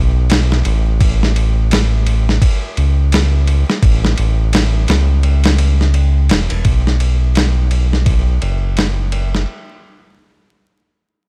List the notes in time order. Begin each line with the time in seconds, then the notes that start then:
Already playing: B1
0.30 snare, ride
0.52 snare
0.65 A1, ride
1.00 kick, ride
1.23 snare
1.36 ride
1.71 snare, ride
2.07 ride
2.29 snare
2.42 kick, ride
2.77 C#2, ride
3.12 snare, ride
3.47 ride
3.70 snare
3.83 A1, kick, ride
4.05 snare
4.18 A1, ride
4.53 snare, ride
4.88 C#2, snare, ride
5.23 ride
5.44 snare, ride
5.58 ride
5.81 snare
5.94 ride
6.29 E1, snare, ride
6.50 E1, ride
6.65 B1, kick, ride
6.87 snare
7.00 ride
7.35 snare, ride
7.71 ride
7.93 snare
8.06 kick, ride
8.42 F#1, ride
8.77 snare, ride
9.12 ride
9.35 snare